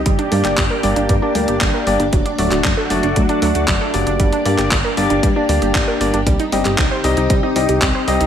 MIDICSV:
0, 0, Header, 1, 6, 480
1, 0, Start_track
1, 0, Key_signature, -2, "minor"
1, 0, Tempo, 517241
1, 55, Time_signature, 4, 2, 24, 8
1, 7671, End_track
2, 0, Start_track
2, 0, Title_t, "String machine"
2, 0, Program_c, 0, 50
2, 0, Note_on_c, 0, 67, 72
2, 56, Note_on_c, 0, 58, 78
2, 56, Note_on_c, 0, 62, 73
2, 56, Note_on_c, 0, 74, 87
2, 1939, Note_off_c, 0, 67, 0
2, 1956, Note_off_c, 0, 58, 0
2, 1975, Note_on_c, 0, 57, 78
2, 1976, Note_on_c, 0, 66, 71
2, 3859, Note_off_c, 0, 74, 0
2, 3876, Note_off_c, 0, 57, 0
2, 3876, Note_off_c, 0, 66, 0
2, 3895, Note_on_c, 0, 58, 79
2, 3895, Note_on_c, 0, 67, 75
2, 3895, Note_on_c, 0, 74, 89
2, 5779, Note_off_c, 0, 62, 0
2, 5796, Note_off_c, 0, 58, 0
2, 5796, Note_off_c, 0, 74, 0
2, 5816, Note_on_c, 0, 60, 78
2, 5816, Note_on_c, 0, 63, 73
2, 5816, Note_on_c, 0, 75, 87
2, 7671, Note_off_c, 0, 60, 0
2, 7671, Note_off_c, 0, 63, 0
2, 7671, Note_off_c, 0, 67, 0
2, 7671, Note_off_c, 0, 75, 0
2, 7671, End_track
3, 0, Start_track
3, 0, Title_t, "Tine electric piano"
3, 0, Program_c, 1, 4
3, 295, Note_on_c, 1, 58, 82
3, 295, Note_on_c, 1, 62, 78
3, 295, Note_on_c, 1, 67, 77
3, 295, Note_on_c, 1, 74, 93
3, 576, Note_off_c, 1, 58, 0
3, 576, Note_off_c, 1, 62, 0
3, 576, Note_off_c, 1, 67, 0
3, 576, Note_off_c, 1, 74, 0
3, 774, Note_on_c, 1, 58, 96
3, 774, Note_on_c, 1, 67, 87
3, 775, Note_on_c, 1, 62, 88
3, 775, Note_on_c, 1, 74, 103
3, 1056, Note_off_c, 1, 58, 0
3, 1056, Note_off_c, 1, 62, 0
3, 1056, Note_off_c, 1, 67, 0
3, 1056, Note_off_c, 1, 74, 0
3, 1135, Note_on_c, 1, 58, 80
3, 1135, Note_on_c, 1, 62, 72
3, 1135, Note_on_c, 1, 67, 71
3, 1135, Note_on_c, 1, 74, 86
3, 1226, Note_off_c, 1, 58, 0
3, 1226, Note_off_c, 1, 62, 0
3, 1226, Note_off_c, 1, 67, 0
3, 1226, Note_off_c, 1, 74, 0
3, 1254, Note_on_c, 1, 58, 74
3, 1255, Note_on_c, 1, 62, 66
3, 1255, Note_on_c, 1, 67, 69
3, 1255, Note_on_c, 1, 74, 80
3, 1706, Note_off_c, 1, 58, 0
3, 1706, Note_off_c, 1, 62, 0
3, 1706, Note_off_c, 1, 67, 0
3, 1706, Note_off_c, 1, 74, 0
3, 1735, Note_on_c, 1, 58, 84
3, 1735, Note_on_c, 1, 62, 76
3, 1735, Note_on_c, 1, 67, 76
3, 1735, Note_on_c, 1, 74, 92
3, 1910, Note_off_c, 1, 74, 0
3, 1911, Note_off_c, 1, 58, 0
3, 1911, Note_off_c, 1, 62, 0
3, 1911, Note_off_c, 1, 67, 0
3, 2215, Note_on_c, 1, 57, 86
3, 2215, Note_on_c, 1, 62, 75
3, 2215, Note_on_c, 1, 66, 76
3, 2215, Note_on_c, 1, 74, 93
3, 2496, Note_off_c, 1, 57, 0
3, 2496, Note_off_c, 1, 62, 0
3, 2496, Note_off_c, 1, 66, 0
3, 2496, Note_off_c, 1, 74, 0
3, 2694, Note_on_c, 1, 57, 92
3, 2694, Note_on_c, 1, 66, 87
3, 2694, Note_on_c, 1, 74, 105
3, 2695, Note_on_c, 1, 62, 87
3, 2975, Note_off_c, 1, 57, 0
3, 2975, Note_off_c, 1, 66, 0
3, 2975, Note_off_c, 1, 74, 0
3, 2976, Note_off_c, 1, 62, 0
3, 3055, Note_on_c, 1, 57, 80
3, 3055, Note_on_c, 1, 62, 74
3, 3055, Note_on_c, 1, 66, 73
3, 3055, Note_on_c, 1, 74, 86
3, 3146, Note_off_c, 1, 57, 0
3, 3146, Note_off_c, 1, 62, 0
3, 3146, Note_off_c, 1, 66, 0
3, 3146, Note_off_c, 1, 74, 0
3, 3175, Note_on_c, 1, 62, 64
3, 3176, Note_on_c, 1, 57, 70
3, 3176, Note_on_c, 1, 66, 64
3, 3176, Note_on_c, 1, 74, 75
3, 3626, Note_off_c, 1, 62, 0
3, 3627, Note_off_c, 1, 57, 0
3, 3627, Note_off_c, 1, 66, 0
3, 3627, Note_off_c, 1, 74, 0
3, 3655, Note_on_c, 1, 58, 73
3, 3655, Note_on_c, 1, 62, 66
3, 3655, Note_on_c, 1, 67, 66
3, 3655, Note_on_c, 1, 74, 82
3, 4106, Note_off_c, 1, 58, 0
3, 4106, Note_off_c, 1, 62, 0
3, 4106, Note_off_c, 1, 67, 0
3, 4106, Note_off_c, 1, 74, 0
3, 4135, Note_on_c, 1, 58, 83
3, 4135, Note_on_c, 1, 62, 77
3, 4135, Note_on_c, 1, 67, 77
3, 4135, Note_on_c, 1, 74, 93
3, 4416, Note_off_c, 1, 58, 0
3, 4416, Note_off_c, 1, 62, 0
3, 4416, Note_off_c, 1, 67, 0
3, 4416, Note_off_c, 1, 74, 0
3, 4614, Note_on_c, 1, 62, 86
3, 4615, Note_on_c, 1, 58, 92
3, 4615, Note_on_c, 1, 67, 86
3, 4615, Note_on_c, 1, 74, 106
3, 4895, Note_off_c, 1, 62, 0
3, 4896, Note_off_c, 1, 58, 0
3, 4896, Note_off_c, 1, 67, 0
3, 4896, Note_off_c, 1, 74, 0
3, 4975, Note_on_c, 1, 58, 78
3, 4975, Note_on_c, 1, 62, 73
3, 4975, Note_on_c, 1, 67, 71
3, 4975, Note_on_c, 1, 74, 86
3, 5066, Note_off_c, 1, 58, 0
3, 5066, Note_off_c, 1, 62, 0
3, 5066, Note_off_c, 1, 67, 0
3, 5066, Note_off_c, 1, 74, 0
3, 5094, Note_on_c, 1, 74, 82
3, 5095, Note_on_c, 1, 58, 73
3, 5095, Note_on_c, 1, 62, 67
3, 5095, Note_on_c, 1, 67, 68
3, 5546, Note_off_c, 1, 58, 0
3, 5546, Note_off_c, 1, 62, 0
3, 5546, Note_off_c, 1, 67, 0
3, 5546, Note_off_c, 1, 74, 0
3, 5575, Note_on_c, 1, 74, 92
3, 5576, Note_on_c, 1, 58, 84
3, 5576, Note_on_c, 1, 62, 76
3, 5576, Note_on_c, 1, 67, 77
3, 5751, Note_off_c, 1, 58, 0
3, 5751, Note_off_c, 1, 62, 0
3, 5751, Note_off_c, 1, 67, 0
3, 5751, Note_off_c, 1, 74, 0
3, 6054, Note_on_c, 1, 63, 77
3, 6055, Note_on_c, 1, 60, 84
3, 6055, Note_on_c, 1, 67, 78
3, 6055, Note_on_c, 1, 75, 91
3, 6336, Note_off_c, 1, 60, 0
3, 6336, Note_off_c, 1, 63, 0
3, 6336, Note_off_c, 1, 67, 0
3, 6336, Note_off_c, 1, 75, 0
3, 6535, Note_on_c, 1, 60, 98
3, 6535, Note_on_c, 1, 63, 90
3, 6535, Note_on_c, 1, 67, 86
3, 6535, Note_on_c, 1, 75, 108
3, 6816, Note_off_c, 1, 60, 0
3, 6816, Note_off_c, 1, 63, 0
3, 6816, Note_off_c, 1, 67, 0
3, 6816, Note_off_c, 1, 75, 0
3, 6895, Note_on_c, 1, 60, 79
3, 6895, Note_on_c, 1, 63, 74
3, 6895, Note_on_c, 1, 75, 87
3, 6896, Note_on_c, 1, 67, 72
3, 6986, Note_off_c, 1, 60, 0
3, 6986, Note_off_c, 1, 63, 0
3, 6986, Note_off_c, 1, 67, 0
3, 6986, Note_off_c, 1, 75, 0
3, 7015, Note_on_c, 1, 60, 73
3, 7015, Note_on_c, 1, 75, 82
3, 7016, Note_on_c, 1, 63, 69
3, 7016, Note_on_c, 1, 67, 67
3, 7466, Note_off_c, 1, 60, 0
3, 7467, Note_off_c, 1, 63, 0
3, 7467, Note_off_c, 1, 67, 0
3, 7467, Note_off_c, 1, 75, 0
3, 7496, Note_on_c, 1, 60, 86
3, 7496, Note_on_c, 1, 63, 77
3, 7496, Note_on_c, 1, 67, 78
3, 7496, Note_on_c, 1, 75, 95
3, 7671, Note_off_c, 1, 60, 0
3, 7671, Note_off_c, 1, 63, 0
3, 7671, Note_off_c, 1, 67, 0
3, 7671, Note_off_c, 1, 75, 0
3, 7671, End_track
4, 0, Start_track
4, 0, Title_t, "Synth arpeggio sound"
4, 0, Program_c, 2, 84
4, 55, Note_on_c, 2, 55, 100
4, 155, Note_off_c, 2, 55, 0
4, 174, Note_on_c, 2, 62, 101
4, 241, Note_off_c, 2, 62, 0
4, 294, Note_on_c, 2, 55, 102
4, 334, Note_off_c, 2, 55, 0
4, 415, Note_on_c, 2, 67, 75
4, 482, Note_off_c, 2, 67, 0
4, 534, Note_on_c, 2, 55, 82
4, 575, Note_off_c, 2, 55, 0
4, 654, Note_on_c, 2, 70, 102
4, 695, Note_off_c, 2, 70, 0
4, 774, Note_on_c, 2, 55, 78
4, 875, Note_off_c, 2, 55, 0
4, 894, Note_on_c, 2, 62, 99
4, 934, Note_off_c, 2, 62, 0
4, 1014, Note_on_c, 2, 55, 102
4, 1114, Note_off_c, 2, 55, 0
4, 1135, Note_on_c, 2, 62, 99
4, 1202, Note_off_c, 2, 62, 0
4, 1255, Note_on_c, 2, 55, 99
4, 1295, Note_off_c, 2, 55, 0
4, 1376, Note_on_c, 2, 67, 74
4, 1442, Note_off_c, 2, 67, 0
4, 1496, Note_on_c, 2, 55, 83
4, 1535, Note_off_c, 2, 55, 0
4, 1615, Note_on_c, 2, 70, 101
4, 1655, Note_off_c, 2, 70, 0
4, 1735, Note_on_c, 2, 55, 72
4, 1835, Note_off_c, 2, 55, 0
4, 1855, Note_on_c, 2, 62, 97
4, 1895, Note_off_c, 2, 62, 0
4, 1974, Note_on_c, 2, 54, 98
4, 2075, Note_off_c, 2, 54, 0
4, 2094, Note_on_c, 2, 62, 98
4, 2161, Note_off_c, 2, 62, 0
4, 2214, Note_on_c, 2, 54, 99
4, 2255, Note_off_c, 2, 54, 0
4, 2334, Note_on_c, 2, 66, 76
4, 2401, Note_off_c, 2, 66, 0
4, 2454, Note_on_c, 2, 54, 79
4, 2495, Note_off_c, 2, 54, 0
4, 2574, Note_on_c, 2, 69, 101
4, 2615, Note_off_c, 2, 69, 0
4, 2695, Note_on_c, 2, 54, 76
4, 2795, Note_off_c, 2, 54, 0
4, 2814, Note_on_c, 2, 62, 97
4, 2855, Note_off_c, 2, 62, 0
4, 2935, Note_on_c, 2, 54, 100
4, 3035, Note_off_c, 2, 54, 0
4, 3055, Note_on_c, 2, 62, 98
4, 3122, Note_off_c, 2, 62, 0
4, 3175, Note_on_c, 2, 54, 98
4, 3215, Note_off_c, 2, 54, 0
4, 3296, Note_on_c, 2, 66, 76
4, 3362, Note_off_c, 2, 66, 0
4, 3415, Note_on_c, 2, 54, 84
4, 3455, Note_off_c, 2, 54, 0
4, 3535, Note_on_c, 2, 69, 101
4, 3575, Note_off_c, 2, 69, 0
4, 3655, Note_on_c, 2, 54, 73
4, 3755, Note_off_c, 2, 54, 0
4, 3775, Note_on_c, 2, 62, 95
4, 3815, Note_off_c, 2, 62, 0
4, 3895, Note_on_c, 2, 55, 99
4, 3995, Note_off_c, 2, 55, 0
4, 4016, Note_on_c, 2, 62, 101
4, 4082, Note_off_c, 2, 62, 0
4, 4136, Note_on_c, 2, 55, 100
4, 4175, Note_off_c, 2, 55, 0
4, 4255, Note_on_c, 2, 67, 74
4, 4322, Note_off_c, 2, 67, 0
4, 4375, Note_on_c, 2, 55, 82
4, 4415, Note_off_c, 2, 55, 0
4, 4495, Note_on_c, 2, 70, 99
4, 4535, Note_off_c, 2, 70, 0
4, 4616, Note_on_c, 2, 55, 75
4, 4715, Note_off_c, 2, 55, 0
4, 4736, Note_on_c, 2, 62, 94
4, 4775, Note_off_c, 2, 62, 0
4, 4856, Note_on_c, 2, 55, 104
4, 4956, Note_off_c, 2, 55, 0
4, 4976, Note_on_c, 2, 62, 98
4, 5042, Note_off_c, 2, 62, 0
4, 5096, Note_on_c, 2, 55, 97
4, 5136, Note_off_c, 2, 55, 0
4, 5216, Note_on_c, 2, 67, 78
4, 5282, Note_off_c, 2, 67, 0
4, 5336, Note_on_c, 2, 55, 84
4, 5375, Note_off_c, 2, 55, 0
4, 5455, Note_on_c, 2, 70, 100
4, 5495, Note_off_c, 2, 70, 0
4, 5576, Note_on_c, 2, 55, 74
4, 5675, Note_off_c, 2, 55, 0
4, 5695, Note_on_c, 2, 62, 95
4, 5735, Note_off_c, 2, 62, 0
4, 5816, Note_on_c, 2, 55, 100
4, 5915, Note_off_c, 2, 55, 0
4, 5936, Note_on_c, 2, 63, 100
4, 6002, Note_off_c, 2, 63, 0
4, 6056, Note_on_c, 2, 55, 100
4, 6096, Note_off_c, 2, 55, 0
4, 6176, Note_on_c, 2, 67, 76
4, 6242, Note_off_c, 2, 67, 0
4, 6296, Note_on_c, 2, 55, 79
4, 6336, Note_off_c, 2, 55, 0
4, 6416, Note_on_c, 2, 72, 102
4, 6455, Note_off_c, 2, 72, 0
4, 6536, Note_on_c, 2, 55, 76
4, 6636, Note_off_c, 2, 55, 0
4, 6657, Note_on_c, 2, 63, 100
4, 6696, Note_off_c, 2, 63, 0
4, 6776, Note_on_c, 2, 55, 102
4, 6876, Note_off_c, 2, 55, 0
4, 6896, Note_on_c, 2, 63, 100
4, 6962, Note_off_c, 2, 63, 0
4, 7017, Note_on_c, 2, 55, 99
4, 7056, Note_off_c, 2, 55, 0
4, 7137, Note_on_c, 2, 67, 76
4, 7203, Note_off_c, 2, 67, 0
4, 7256, Note_on_c, 2, 55, 84
4, 7296, Note_off_c, 2, 55, 0
4, 7376, Note_on_c, 2, 72, 101
4, 7416, Note_off_c, 2, 72, 0
4, 7496, Note_on_c, 2, 55, 72
4, 7596, Note_off_c, 2, 55, 0
4, 7617, Note_on_c, 2, 63, 99
4, 7656, Note_off_c, 2, 63, 0
4, 7671, End_track
5, 0, Start_track
5, 0, Title_t, "Analog synth bass"
5, 0, Program_c, 3, 38
5, 55, Note_on_c, 3, 31, 97
5, 155, Note_off_c, 3, 31, 0
5, 296, Note_on_c, 3, 43, 94
5, 395, Note_off_c, 3, 43, 0
5, 415, Note_on_c, 3, 31, 81
5, 515, Note_off_c, 3, 31, 0
5, 535, Note_on_c, 3, 31, 100
5, 635, Note_off_c, 3, 31, 0
5, 775, Note_on_c, 3, 31, 92
5, 875, Note_off_c, 3, 31, 0
5, 895, Note_on_c, 3, 31, 80
5, 995, Note_off_c, 3, 31, 0
5, 1015, Note_on_c, 3, 43, 98
5, 1115, Note_off_c, 3, 43, 0
5, 1255, Note_on_c, 3, 38, 93
5, 1355, Note_off_c, 3, 38, 0
5, 1375, Note_on_c, 3, 31, 83
5, 1475, Note_off_c, 3, 31, 0
5, 1495, Note_on_c, 3, 31, 97
5, 1595, Note_off_c, 3, 31, 0
5, 1735, Note_on_c, 3, 31, 92
5, 1835, Note_off_c, 3, 31, 0
5, 1854, Note_on_c, 3, 31, 81
5, 1954, Note_off_c, 3, 31, 0
5, 1974, Note_on_c, 3, 30, 97
5, 2074, Note_off_c, 3, 30, 0
5, 2216, Note_on_c, 3, 26, 94
5, 2315, Note_off_c, 3, 26, 0
5, 2335, Note_on_c, 3, 26, 79
5, 2435, Note_off_c, 3, 26, 0
5, 2454, Note_on_c, 3, 30, 101
5, 2554, Note_off_c, 3, 30, 0
5, 2695, Note_on_c, 3, 30, 91
5, 2795, Note_off_c, 3, 30, 0
5, 2816, Note_on_c, 3, 30, 78
5, 2915, Note_off_c, 3, 30, 0
5, 2934, Note_on_c, 3, 38, 98
5, 3034, Note_off_c, 3, 38, 0
5, 3175, Note_on_c, 3, 38, 93
5, 3275, Note_off_c, 3, 38, 0
5, 3295, Note_on_c, 3, 38, 80
5, 3395, Note_off_c, 3, 38, 0
5, 3414, Note_on_c, 3, 30, 98
5, 3514, Note_off_c, 3, 30, 0
5, 3655, Note_on_c, 3, 30, 92
5, 3755, Note_off_c, 3, 30, 0
5, 3775, Note_on_c, 3, 30, 80
5, 3875, Note_off_c, 3, 30, 0
5, 3894, Note_on_c, 3, 31, 98
5, 3994, Note_off_c, 3, 31, 0
5, 4135, Note_on_c, 3, 43, 92
5, 4235, Note_off_c, 3, 43, 0
5, 4255, Note_on_c, 3, 31, 80
5, 4355, Note_off_c, 3, 31, 0
5, 4374, Note_on_c, 3, 31, 102
5, 4474, Note_off_c, 3, 31, 0
5, 4614, Note_on_c, 3, 31, 93
5, 4714, Note_off_c, 3, 31, 0
5, 4734, Note_on_c, 3, 31, 79
5, 4834, Note_off_c, 3, 31, 0
5, 4854, Note_on_c, 3, 43, 99
5, 4954, Note_off_c, 3, 43, 0
5, 5093, Note_on_c, 3, 38, 94
5, 5194, Note_off_c, 3, 38, 0
5, 5214, Note_on_c, 3, 31, 85
5, 5314, Note_off_c, 3, 31, 0
5, 5335, Note_on_c, 3, 31, 98
5, 5435, Note_off_c, 3, 31, 0
5, 5574, Note_on_c, 3, 31, 94
5, 5674, Note_off_c, 3, 31, 0
5, 5693, Note_on_c, 3, 31, 80
5, 5794, Note_off_c, 3, 31, 0
5, 5815, Note_on_c, 3, 36, 99
5, 5915, Note_off_c, 3, 36, 0
5, 6054, Note_on_c, 3, 31, 92
5, 6154, Note_off_c, 3, 31, 0
5, 6173, Note_on_c, 3, 31, 81
5, 6274, Note_off_c, 3, 31, 0
5, 6295, Note_on_c, 3, 36, 100
5, 6395, Note_off_c, 3, 36, 0
5, 6535, Note_on_c, 3, 36, 95
5, 6635, Note_off_c, 3, 36, 0
5, 6654, Note_on_c, 3, 36, 82
5, 6754, Note_off_c, 3, 36, 0
5, 6776, Note_on_c, 3, 36, 98
5, 6875, Note_off_c, 3, 36, 0
5, 7014, Note_on_c, 3, 36, 91
5, 7114, Note_off_c, 3, 36, 0
5, 7135, Note_on_c, 3, 36, 84
5, 7235, Note_off_c, 3, 36, 0
5, 7256, Note_on_c, 3, 36, 98
5, 7355, Note_off_c, 3, 36, 0
5, 7495, Note_on_c, 3, 36, 95
5, 7595, Note_off_c, 3, 36, 0
5, 7615, Note_on_c, 3, 36, 81
5, 7671, Note_off_c, 3, 36, 0
5, 7671, End_track
6, 0, Start_track
6, 0, Title_t, "Drums"
6, 54, Note_on_c, 9, 42, 70
6, 55, Note_on_c, 9, 36, 119
6, 147, Note_off_c, 9, 36, 0
6, 147, Note_off_c, 9, 42, 0
6, 174, Note_on_c, 9, 42, 33
6, 267, Note_off_c, 9, 42, 0
6, 294, Note_on_c, 9, 46, 92
6, 387, Note_off_c, 9, 46, 0
6, 414, Note_on_c, 9, 39, 38
6, 414, Note_on_c, 9, 42, 51
6, 507, Note_off_c, 9, 39, 0
6, 507, Note_off_c, 9, 42, 0
6, 533, Note_on_c, 9, 39, 121
6, 533, Note_on_c, 9, 42, 76
6, 535, Note_on_c, 9, 36, 118
6, 626, Note_off_c, 9, 39, 0
6, 626, Note_off_c, 9, 42, 0
6, 628, Note_off_c, 9, 36, 0
6, 773, Note_on_c, 9, 46, 82
6, 866, Note_off_c, 9, 46, 0
6, 894, Note_on_c, 9, 42, 49
6, 987, Note_off_c, 9, 42, 0
6, 1013, Note_on_c, 9, 42, 75
6, 1015, Note_on_c, 9, 36, 116
6, 1106, Note_off_c, 9, 42, 0
6, 1108, Note_off_c, 9, 36, 0
6, 1253, Note_on_c, 9, 46, 98
6, 1346, Note_off_c, 9, 46, 0
6, 1373, Note_on_c, 9, 42, 48
6, 1466, Note_off_c, 9, 42, 0
6, 1493, Note_on_c, 9, 39, 125
6, 1493, Note_on_c, 9, 42, 74
6, 1495, Note_on_c, 9, 36, 118
6, 1586, Note_off_c, 9, 39, 0
6, 1586, Note_off_c, 9, 42, 0
6, 1587, Note_off_c, 9, 36, 0
6, 1734, Note_on_c, 9, 46, 81
6, 1826, Note_off_c, 9, 46, 0
6, 1853, Note_on_c, 9, 42, 49
6, 1946, Note_off_c, 9, 42, 0
6, 1973, Note_on_c, 9, 42, 72
6, 1975, Note_on_c, 9, 36, 118
6, 2066, Note_off_c, 9, 42, 0
6, 2067, Note_off_c, 9, 36, 0
6, 2094, Note_on_c, 9, 42, 33
6, 2186, Note_off_c, 9, 42, 0
6, 2213, Note_on_c, 9, 46, 93
6, 2306, Note_off_c, 9, 46, 0
6, 2334, Note_on_c, 9, 39, 38
6, 2334, Note_on_c, 9, 42, 49
6, 2427, Note_off_c, 9, 39, 0
6, 2427, Note_off_c, 9, 42, 0
6, 2453, Note_on_c, 9, 39, 117
6, 2453, Note_on_c, 9, 42, 73
6, 2455, Note_on_c, 9, 36, 114
6, 2546, Note_off_c, 9, 39, 0
6, 2546, Note_off_c, 9, 42, 0
6, 2547, Note_off_c, 9, 36, 0
6, 2694, Note_on_c, 9, 46, 86
6, 2786, Note_off_c, 9, 46, 0
6, 2814, Note_on_c, 9, 42, 47
6, 2907, Note_off_c, 9, 42, 0
6, 2934, Note_on_c, 9, 42, 74
6, 2935, Note_on_c, 9, 36, 116
6, 3027, Note_off_c, 9, 36, 0
6, 3027, Note_off_c, 9, 42, 0
6, 3054, Note_on_c, 9, 42, 33
6, 3147, Note_off_c, 9, 42, 0
6, 3174, Note_on_c, 9, 46, 97
6, 3267, Note_off_c, 9, 46, 0
6, 3295, Note_on_c, 9, 42, 48
6, 3387, Note_off_c, 9, 42, 0
6, 3414, Note_on_c, 9, 36, 114
6, 3414, Note_on_c, 9, 39, 118
6, 3414, Note_on_c, 9, 42, 73
6, 3507, Note_off_c, 9, 36, 0
6, 3507, Note_off_c, 9, 39, 0
6, 3507, Note_off_c, 9, 42, 0
6, 3654, Note_on_c, 9, 46, 83
6, 3747, Note_off_c, 9, 46, 0
6, 3775, Note_on_c, 9, 42, 48
6, 3867, Note_off_c, 9, 42, 0
6, 3894, Note_on_c, 9, 36, 114
6, 3894, Note_on_c, 9, 42, 70
6, 3987, Note_off_c, 9, 36, 0
6, 3987, Note_off_c, 9, 42, 0
6, 4014, Note_on_c, 9, 42, 34
6, 4106, Note_off_c, 9, 42, 0
6, 4134, Note_on_c, 9, 46, 97
6, 4227, Note_off_c, 9, 46, 0
6, 4254, Note_on_c, 9, 39, 36
6, 4254, Note_on_c, 9, 42, 49
6, 4347, Note_off_c, 9, 39, 0
6, 4347, Note_off_c, 9, 42, 0
6, 4375, Note_on_c, 9, 36, 113
6, 4375, Note_on_c, 9, 39, 118
6, 4375, Note_on_c, 9, 42, 74
6, 4467, Note_off_c, 9, 36, 0
6, 4467, Note_off_c, 9, 39, 0
6, 4467, Note_off_c, 9, 42, 0
6, 4614, Note_on_c, 9, 46, 86
6, 4707, Note_off_c, 9, 46, 0
6, 4735, Note_on_c, 9, 42, 48
6, 4827, Note_off_c, 9, 42, 0
6, 4854, Note_on_c, 9, 36, 114
6, 4855, Note_on_c, 9, 42, 73
6, 4947, Note_off_c, 9, 36, 0
6, 4948, Note_off_c, 9, 42, 0
6, 5095, Note_on_c, 9, 46, 102
6, 5188, Note_off_c, 9, 46, 0
6, 5215, Note_on_c, 9, 42, 48
6, 5308, Note_off_c, 9, 42, 0
6, 5335, Note_on_c, 9, 36, 112
6, 5335, Note_on_c, 9, 39, 115
6, 5335, Note_on_c, 9, 42, 73
6, 5428, Note_off_c, 9, 36, 0
6, 5428, Note_off_c, 9, 39, 0
6, 5428, Note_off_c, 9, 42, 0
6, 5576, Note_on_c, 9, 46, 90
6, 5668, Note_off_c, 9, 46, 0
6, 5695, Note_on_c, 9, 42, 47
6, 5788, Note_off_c, 9, 42, 0
6, 5815, Note_on_c, 9, 36, 112
6, 5815, Note_on_c, 9, 42, 75
6, 5908, Note_off_c, 9, 36, 0
6, 5908, Note_off_c, 9, 42, 0
6, 5935, Note_on_c, 9, 42, 35
6, 6028, Note_off_c, 9, 42, 0
6, 6054, Note_on_c, 9, 46, 104
6, 6147, Note_off_c, 9, 46, 0
6, 6174, Note_on_c, 9, 39, 35
6, 6174, Note_on_c, 9, 42, 52
6, 6267, Note_off_c, 9, 39, 0
6, 6267, Note_off_c, 9, 42, 0
6, 6294, Note_on_c, 9, 39, 111
6, 6294, Note_on_c, 9, 42, 76
6, 6295, Note_on_c, 9, 36, 110
6, 6387, Note_off_c, 9, 39, 0
6, 6387, Note_off_c, 9, 42, 0
6, 6388, Note_off_c, 9, 36, 0
6, 6534, Note_on_c, 9, 46, 91
6, 6627, Note_off_c, 9, 46, 0
6, 6654, Note_on_c, 9, 42, 50
6, 6747, Note_off_c, 9, 42, 0
6, 6774, Note_on_c, 9, 42, 76
6, 6775, Note_on_c, 9, 36, 110
6, 6867, Note_off_c, 9, 42, 0
6, 6868, Note_off_c, 9, 36, 0
6, 7014, Note_on_c, 9, 46, 110
6, 7107, Note_off_c, 9, 46, 0
6, 7134, Note_on_c, 9, 42, 51
6, 7227, Note_off_c, 9, 42, 0
6, 7255, Note_on_c, 9, 39, 112
6, 7255, Note_on_c, 9, 42, 78
6, 7256, Note_on_c, 9, 36, 108
6, 7348, Note_off_c, 9, 39, 0
6, 7348, Note_off_c, 9, 42, 0
6, 7349, Note_off_c, 9, 36, 0
6, 7495, Note_on_c, 9, 46, 91
6, 7588, Note_off_c, 9, 46, 0
6, 7615, Note_on_c, 9, 42, 49
6, 7671, Note_off_c, 9, 42, 0
6, 7671, End_track
0, 0, End_of_file